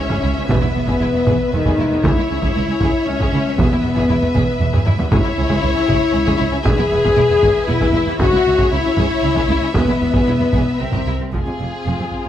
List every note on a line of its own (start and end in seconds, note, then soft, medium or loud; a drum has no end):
0.00 0.49 C#4 medium
0.00 0.45 C#5 medium
0.00 2.00 E5 soft
0.00 impact medium
0.10 0.15 C#2 medium
0.10 0.15 G#4 medium
0.10 taiko medium
0.23 0.29 C#2 soft
0.23 0.28 E4 soft
0.36 0.42 C#2 soft
0.36 0.41 C#4 medium
0.49 0.55 E1 medium
0.49 0.54 E2 medium
0.49 1.53 B3 medium
0.49 1.51 B3 medium
0.49 0.54 G#4 medium
0.49 2.01 B4 medium
0.49 taiko medium
0.62 0.67 E2 soft
0.62 0.67 E4 soft
0.74 0.81 E1 soft
0.74 0.80 E2 soft
0.74 0.80 B3 soft
0.88 0.93 E2 medium
0.88 0.93 G#4 medium
0.88 taiko medium
1.01 1.07 E1 soft
1.01 1.06 E2 soft
1.01 1.07 E4 soft
1.14 1.19 E2 soft
1.14 1.19 B3 soft
1.26 1.32 E1 medium
1.26 1.31 E2 medium
1.26 1.32 G#4 medium
1.26 taiko medium
1.52 1.58 E1 soft
1.52 1.58 E2 soft
1.52 2.03 D#3 medium
1.52 1.58 B3 soft
1.52 2.04 D#4 medium
1.65 1.70 E2 medium
1.65 1.71 G#4 medium
1.65 taiko medium
1.78 1.84 E1 soft
1.78 1.84 E2 soft
1.78 1.84 E4 medium
1.91 1.96 E2 soft
1.91 1.98 B3 soft
2.04 2.09 C#2 medium
2.04 2.10 C#2 medium
2.04 3.07 E4 medium
2.04 2.11 G#4 medium
2.04 3.56 C#5 medium
2.04 5.09 E5 medium
2.04 taiko medium
2.17 2.22 C#2 soft
2.17 2.23 E4 soft
2.30 2.35 C#2 soft
2.30 2.35 C#4 soft
2.42 2.47 C#2 medium
2.42 2.48 G#4 medium
2.42 taiko medium
2.55 2.61 C#2 soft
2.55 2.61 E4 soft
2.68 2.73 C#2 soft
2.68 2.74 C#4 soft
2.81 2.86 C#2 medium
2.81 2.87 C#2 medium
2.81 2.87 G#4 medium
2.81 taiko medium
3.06 3.12 C#2 soft
3.06 3.58 C#4 medium
3.06 3.59 C#4 medium
3.06 3.13 C#4 medium
3.19 3.24 C#2 medium
3.19 3.27 G#4 medium
3.19 taiko medium
3.33 3.38 C#2 medium
3.33 3.38 C#2 soft
3.33 3.40 E4 medium
3.46 3.51 C#2 soft
3.46 3.53 C#4 medium
3.58 3.64 E1 medium
3.58 3.63 E2 medium
3.58 4.59 B3 medium
3.58 4.61 B3 medium
3.58 3.66 G#4 medium
3.58 5.13 B4 medium
3.58 taiko medium
3.71 3.76 E2 soft
3.71 3.77 E4 soft
3.84 3.90 E1 soft
3.84 3.89 E2 soft
3.84 3.90 B3 soft
3.96 4.01 E2 medium
3.96 4.02 G#4 medium
3.96 taiko medium
4.09 4.15 E1 medium
4.09 4.14 E2 medium
4.09 4.15 E4 soft
4.22 4.27 E2 soft
4.22 4.27 B3 soft
4.34 4.41 E1 medium
4.34 4.40 E2 medium
4.34 4.40 G#4 medium
4.34 taiko medium
4.60 4.67 E1 medium
4.60 4.66 E2 soft
4.60 4.66 B3 medium
4.73 4.78 E2 medium
4.73 4.79 G#4 medium
4.73 taiko low-mid medium
4.86 4.92 E1 medium
4.86 4.91 E2 medium
4.86 4.91 E4 medium
4.86 taiko low-mid medium
4.99 5.04 E2 medium
4.99 5.05 B3 medium
4.99 taiko low medium
5.11 5.17 C#2 medium
5.11 5.18 C#2 medium
5.11 6.61 E4 loud
5.11 6.62 E4 medium
5.11 5.17 G#4 medium
5.11 6.65 C#5 medium
5.11 8.16 E5 medium
5.11 taiko medium
5.24 5.30 C#2 soft
5.24 5.30 E4 soft
5.37 5.42 C#2 medium
5.37 5.43 C#2 medium
5.37 5.42 C#4 medium
5.48 5.55 C#2 medium
5.48 5.54 G#4 medium
5.48 taiko medium
5.61 5.68 C#2 soft
5.61 5.68 C#2 medium
5.61 5.67 E4 medium
5.75 5.81 C#2 soft
5.75 5.80 C#4 medium
5.87 5.93 C#2 medium
5.87 5.94 C#2 medium
5.87 5.92 G#4 medium
5.87 taiko medium
6.12 6.19 C#2 medium
6.12 6.20 C#2 medium
6.12 6.17 C#4 medium
6.25 6.32 C#2 medium
6.25 6.31 G#4 medium
6.25 taiko medium
6.38 6.45 C#2 medium
6.38 6.44 E4 medium
6.51 6.58 C#2 medium
6.51 6.57 C#4 medium
6.63 6.71 E1 medium
6.63 6.71 E2 medium
6.63 6.69 G#4 medium
6.63 7.66 G#4 medium
6.63 7.66 G#4 loud
6.63 8.15 B4 medium
6.63 taiko medium
6.77 6.84 E2 medium
6.77 6.83 E4 medium
6.91 6.97 E1 medium
6.91 6.96 E2 medium
6.91 6.96 B3 medium
7.03 7.10 E2 medium
7.03 7.08 G#4 medium
7.03 taiko medium
7.16 7.23 E1 medium
7.16 7.22 E2 medium
7.16 7.22 E4 medium
7.29 7.35 E2 medium
7.29 7.34 B3 medium
7.42 7.48 E1 medium
7.42 7.48 E2 medium
7.42 7.47 G#4 medium
7.42 taiko medium
7.68 7.74 E1 medium
7.68 7.73 E2 medium
7.68 7.73 B3 medium
7.68 8.19 E4 loud
7.68 8.20 E4 medium
7.81 7.86 E2 medium
7.81 7.86 G#4 medium
7.81 taiko medium
7.94 8.00 E1 medium
7.94 7.99 E2 medium
7.94 8.01 E4 medium
8.07 8.12 E2 medium
8.07 8.14 B3 medium
8.20 8.25 C#2 medium
8.20 8.26 C#2 medium
8.20 8.71 F#4 medium
8.20 8.71 F#4 loud
8.20 8.26 G#4 medium
8.20 9.72 C#5 medium
8.20 11.09 E5 medium
8.20 taiko loud
8.33 8.38 C#2 soft
8.33 8.39 E4 medium
8.46 8.51 C#2 medium
8.46 8.52 C#2 medium
8.46 8.52 C#4 medium
8.59 8.64 C#2 medium
8.59 8.65 G#4 medium
8.59 taiko medium
8.72 8.77 C#2 medium
8.72 9.73 E4 medium
8.72 9.75 E4 medium
8.72 8.79 E4 medium
8.85 8.90 C#2 medium
8.85 8.91 C#4 soft
8.97 9.03 C#2 medium
8.97 9.03 G#4 medium
8.97 taiko medium
9.24 9.29 C#2 medium
9.24 9.29 C#4 medium
9.36 9.41 C#2 medium
9.36 9.41 G#4 medium
9.36 taiko medium
9.49 9.54 C#2 medium
9.49 9.55 C#2 medium
9.49 9.55 E4 medium
9.62 9.67 C#2 medium
9.62 9.68 C#4 medium
9.74 9.81 E1 medium
9.74 9.80 E2 medium
9.74 10.77 B3 medium
9.74 10.78 B3 medium
9.74 9.81 G#4 medium
9.74 10.79 B4 medium
9.74 taiko medium
9.88 9.93 E2 soft
9.88 9.94 E4 soft
10.01 10.07 E1 soft
10.01 10.06 E2 soft
10.01 10.07 B3 soft
10.14 10.20 E2 medium
10.14 10.19 G#4 medium
10.14 taiko medium
10.27 10.33 E1 soft
10.27 10.33 E2 soft
10.27 10.32 E4 soft
10.40 10.45 E2 soft
10.40 10.45 B3 soft
10.53 10.59 E1 medium
10.53 10.60 E2 medium
10.53 10.59 G#4 medium
10.53 taiko medium
10.79 10.86 C2 soft
10.79 10.85 C4 medium
10.79 11.32 C4 medium
10.79 11.12 A#4 medium
10.93 10.99 C2 medium
10.93 10.98 G4 medium
10.93 taiko medium
11.06 11.12 C2 soft
11.06 11.13 C2 soft
11.06 11.12 E4 soft
11.20 11.26 C2 soft
11.20 11.25 C4 soft
11.33 11.39 F1 soft
11.33 11.39 F2 soft
11.33 11.38 F3 soft
11.33 12.29 C4 soft
11.33 12.29 F4 soft
11.33 12.29 G#4 medium
11.33 12.29 G#4 soft
11.33 taiko medium
11.46 11.52 F2 soft
11.46 11.52 C3 soft
11.60 11.66 F1 soft
11.60 11.65 F2 soft
11.60 11.66 C3 soft
11.86 11.91 F1 soft
11.86 11.92 F2 soft
11.86 11.92 F3 soft
12.00 12.05 F2 soft
12.00 12.05 C3 soft
12.11 taiko soft
12.25 12.29 C3 soft